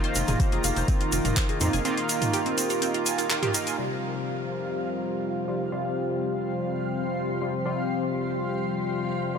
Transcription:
Already playing: analog polysynth D#3 A#3 F4, analog synth pad A#3 D#4 F4, ambient pad D#4 G4 F5 A#5
0.04 synth pluck C5, closed hi-hat
0.13 analog synth bass F1, synth pluck F4, ambient pad A#4, closed hi-hat, shaker
0.28 analog synth bass F1, synth pluck G#4, closed hi-hat, mid tom, shaker
0.40 synth pluck C5, kick, closed hi-hat, shaker
0.52 analog synth bass F1, synth pluck G#4, closed hi-hat
0.64 analog synth bass F1, synth pluck F5, closed hi-hat, shaker
0.76 analog synth bass F1, synth pluck C5, closed hi-hat, shaker
0.88 synth pluck C4, kick, closed hi-hat, shaker
1.01 synth pluck F4, closed hi-hat
1.12 analog synth bass F1, synth pluck F4, closed hi-hat, shaker
1.25 analog synth bass F1, synth pluck F4, closed hi-hat, mid tom, shaker
1.37 synth pluck C5, kick, clap, closed hi-hat, shaker
1.49 synth pluck G#4, closed hi-hat
1.61 analog synth bass F2, analog polysynth D#3 A#3 F4, synth pluck C4, closed hi-hat, mid tom, shaker
1.73 analog synth bass F1, synth pluck G#4, closed hi-hat, shaker
1.85 analog polysynth D#3 A#3 F4, synth pluck C4, analog synth pad G4, closed hi-hat, shaker
1.97 synth pluck F4, closed hi-hat
2.09 synth pluck F4, closed hi-hat, shaker
2.22 synth pluck F4, closed hi-hat, mid tom, shaker
2.33 synth pluck G4, closed hi-hat, shaker
2.46 synth pluck C4, closed hi-hat
2.58 synth pluck C4, closed hi-hat, shaker
2.70 synth pluck F4, closed hi-hat, shaker
2.82 synth pluck C4, closed hi-hat, shaker
2.94 synth pluck F4, closed hi-hat
3.06 synth pluck G#5, closed hi-hat, shaker
3.18 synth pluck F4, closed hi-hat, shaker
3.30 analog polysynth D#3 A#3 F4, synth pluck F4, clap, closed hi-hat, shaker
3.42 analog polysynth D#3 A#3 F4, synth pluck G4, closed hi-hat, mid tom
3.54 synth pluck D#4, closed hi-hat, shaker
3.67 synth pluck G#5, closed hi-hat, shaker
3.78 analog polysynth C3 G3 F4, analog synth pad F3 F4 G4 C5, ambient pad C4
4.07 ambient pad G4
4.95 ambient pad C6
5.48 analog polysynth C3 G3 F4
5.72 analog polysynth C3 G3 F4
7.41 analog polysynth C3 G3 F4
7.66 analog polysynth C3 G3 F4
9.35 analog polysynth C3 G3 F4

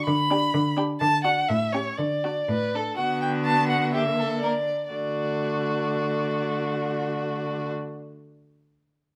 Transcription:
0.06 cello D3, violin B5
0.30 viola D4, violin G4
0.54 cello D3
0.77 viola D4, violin G4
1.00 cello D3, violin A5
1.24 viola D4, violin F#4 F#5
1.49 cello A2, violin E5
1.72 viola C#4, violin G4 C#5
1.97 cello D3, violin D5
2.24 viola D4, violin F#4
2.49 cello A2, violin B4
2.75 viola D4, violin A4
2.96 cello D3, viola B3, violin F#4 F#5
3.22 violin G5
3.45 violin A5
3.69 violin F#5
3.93 viola A#3, violin G4 E5
4.18 violin A4
4.40 viola A#3, violin A#4 D5
4.91 cello D3, viola A3, violin F#4 D5

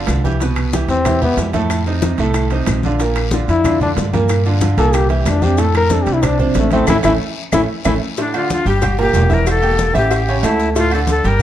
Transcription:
Already playing: grand piano D3 D4 F4
0.07 upright bass C2, high bongo, low bongo, high conga, high timbale, low timbale, short guiro, claves, maracas
0.24 grand piano E3 E4 G4, high conga, short guiro, maracas
0.40 grand piano B2 B3 B4, high bongo, high conga, high timbale, long guiro, maracas
0.56 high bongo, high conga, high timbale, claves, maracas
0.73 grand piano E3 E4 G4, high bongo, high conga, low timbale, short guiro, maracas
0.88 upright bass E2, trombone C4, high bongo, high conga, high timbale, short guiro, maracas
1.05 grand piano E3 E4 G4, high bongo, high conga, low conga, high timbale, long guiro, claves, maracas
1.21 grand piano E3 E4 G4, trombone B3, high bongo, high conga, low conga, maracas
1.37 upright bass F2, high bongo, low bongo, high timbale, low timbale, short guiro, maracas
1.53 grand piano A2 A3 A4, high conga, high timbale, short guiro, maracas
1.70 high bongo, high conga, high timbale, long guiro, claves, maracas
1.86 grand piano C3 C4 D#4, high bongo, high conga, maracas
2.02 grand piano C3 C4 D#4, high bongo, high conga, high timbale, low timbale, short guiro, maracas
2.18 upright bass C2, grand piano A2 A3 A4, high bongo, high conga, high timbale, short guiro, maracas
2.34 high bongo, high conga, high timbale, long guiro, claves, maracas
2.50 grand piano C3 C4 D#4, high bongo, high conga, high timbale, maracas
2.66 upright bass A#1, high bongo, low bongo, high conga, high timbale, low timbale, short guiro, claves, maracas
2.83 grand piano D3 D4 F4, high conga, short guiro, maracas
2.99 grand piano A#2 A#3 A#4, high bongo, high conga, high timbale, long guiro, maracas
3.16 high bongo, high conga, high timbale, claves, maracas
3.31 grand piano D3 D4 F4, high bongo, high conga, low timbale, short guiro, maracas
3.48 upright bass F2, trombone E4, high bongo, high conga, high timbale, short guiro, maracas
3.64 grand piano D3 D4 F4, high bongo, high conga, low conga, high timbale, long guiro, claves, maracas
3.81 grand piano D3 D4 F4, trombone D4, high bongo, high conga, low conga, maracas
3.96 upright bass G2, high bongo, low bongo, high conga, high timbale, low timbale, short guiro, maracas
4.13 grand piano A#2 A#3 A#4, high conga, high timbale, short guiro, maracas
4.29 high bongo, high conga, high timbale, long guiro, claves, maracas
4.45 grand piano D3 D4 F4, high bongo, high conga, maracas
4.61 grand piano D3 D4 F4, high bongo, high conga, high timbale, low timbale, short guiro, maracas
4.77 upright bass C2, grand piano A#2 A#3 A#4, trombone A4, high bongo, high conga, high timbale, short guiro, maracas
4.93 trombone G4, high bongo, high conga, high timbale, long guiro, claves, maracas
5.09 grand piano E3 E4 G4, trombone A#3, high bongo, high conga, high timbale, maracas
5.25 upright bass F2, trombone D4, high bongo, low bongo, high conga, high timbale, low timbale, short guiro, claves, maracas
5.42 grand piano C3 C4 D4, trombone G4, high conga, short guiro, maracas
5.58 grand piano A2 A3 A4, trombone A4, high bongo, high conga, high timbale, long guiro, maracas
5.74 trombone A#4, high bongo, high conga, high timbale, claves, maracas
5.90 grand piano C3 C4 D4, trombone A4, high bongo, high conga, low timbale, short guiro, maracas
6.03 upright bass C2, trombone G4, high bongo, high conga, short guiro, maracas
6.07 high timbale
6.13 trombone E4
6.22 grand piano C3 C4 D4, trombone D4, high bongo, high conga, low conga, high timbale, long guiro, claves, maracas
6.39 grand piano C3 C4 D4, trombone F3, high bongo, high conga, low conga, maracas
6.54 upright bass A1, trombone A3, high bongo, low bongo, high timbale, low timbale, short guiro, maracas
6.71 grand piano A2 A3 A4, trombone C4, high conga, high timbale, short guiro, maracas
6.87 upright bass A1, grand piano A3 C#4 E4, trombone E4, low bongo, high conga, high timbale, long guiro, claves, maracas
7.03 upright bass A1, grand piano A3 C#4 E4, trombone E4, low bongo, high conga, high timbale, long guiro, claves, maracas
7.52 upright bass A1, grand piano A3 C#4 E4, trombone E4, low bongo, high conga, high timbale, long guiro, claves, maracas
7.84 upright bass A1, grand piano A3 C#4 E4, trombone E4, low bongo, high conga, high timbale, long guiro, claves, maracas
8.17 grand piano A2 A3 A4, flute D4, cowbell, high conga, low agogo, long guiro, maracas
8.34 grand piano D3 D4 D5, flute F4, high conga, low agogo, claves, maracas
8.50 flute F4, cowbell, high conga, low timbale, short guiro, maracas
8.65 upright bass G1, grand piano G3 G4 G5, flute G4, cowbell, high conga, short guiro, maracas
8.82 cowbell, high conga, low conga, low agogo, long guiro, claves, maracas
8.98 grand piano A#2 A#3 A#4, flute G4, cowbell, high conga, maracas
9.13 upright bass E1, cowbell, high conga, low timbale, low agogo, short guiro, maracas
9.29 grand piano E3 E4 E5, high conga, short guiro, maracas
9.34 flute A#4
9.46 flute A4, cowbell, high conga, low agogo, long guiro, claves, maracas
9.62 grand piano A#3 G4 G5, high conga, low agogo, maracas
9.79 cowbell, high conga, low timbale, short guiro, maracas
9.94 upright bass A1, grand piano E3 E4 E5, flute G4, cowbell, high conga, low agogo, short guiro, maracas
10.11 flute G4, cowbell, high conga, low agogo, long guiro, claves, maracas
10.28 grand piano C#3 C#4 C#5, high conga, maracas
10.43 upright bass D2, grand piano A3 A4 A5, flute E4, cowbell, high conga, low timbale, low agogo, short guiro, claves, maracas
10.60 cowbell, short guiro, maracas
10.75 grand piano A2 A3 A4, flute F4, cowbell, high conga, low agogo, long guiro, maracas
10.91 grand piano D3 D4 D5, flute A4, high conga, low agogo, claves, maracas
11.07 flute A4, cowbell, high conga, low timbale, short guiro, maracas
11.23 upright bass G1, grand piano G3 G4 G5, cowbell, high conga, short guiro, maracas
11.27 flute A#4

